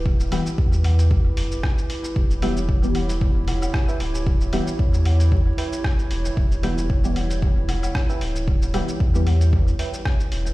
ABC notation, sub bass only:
X:1
M:4/4
L:1/8
Q:"Swing 16ths" 1/4=114
K:Edor
V:1 name="Sub bass" clef=bass
D,,, z E,,2 E,,, F,,, z2 | E,,,6 z D,,,- | D,,, z E,,2 E,,, z2 E,,, | E,,,6 z D,,,- |
D,,, z E,,2 E,,, z2 E,,, |]